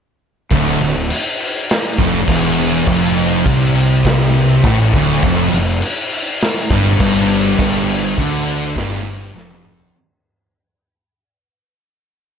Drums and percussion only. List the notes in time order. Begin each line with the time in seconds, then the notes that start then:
0.50 kick, crash
0.81 crash
1.10 crash
1.40 crash
1.70 snare, crash
1.98 kick, crash
2.28 kick, crash
2.58 crash
2.87 kick, crash
3.17 crash
3.46 kick, crash
3.75 crash
4.05 kick, snare, crash
4.34 crash
4.64 kick, crash
4.94 kick, crash
5.23 kick, crash
5.52 crash
5.82 crash
6.12 crash
6.41 snare, crash
6.71 kick, crash
7.00 kick, crash
7.30 crash
7.59 kick, crash
7.89 crash
8.18 kick, crash
8.48 crash
8.76 kick, snare, crash
9.06 crash
9.37 snare
9.50 high tom
9.64 mid tom
9.79 floor tom